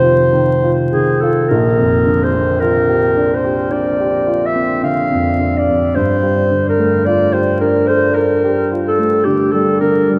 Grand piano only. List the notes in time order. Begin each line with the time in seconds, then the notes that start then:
Already playing: C3 D#3 F4
0.02 F4
0.32 D#3
0.62 F4
0.93 D#3
1.22 F4
1.51 A#1
1.78 F2
2.06 D3
2.35 C4
2.61 F4
2.89 G4
3.16 D4
3.44 G4
3.71 D4
4.00 G4
4.27 F4
4.55 C4
4.83 D3
5.11 F2
5.39 D3
5.68 F2
5.96 G2
6.22 G3
6.51 D3
6.78 A3
7.06 F4
7.33 G4
7.61 D4
7.89 A4
8.16 D4
8.44 G4
8.72 F4
8.99 A3
9.26 D3
9.54 G3
9.81 D3
10.09 G3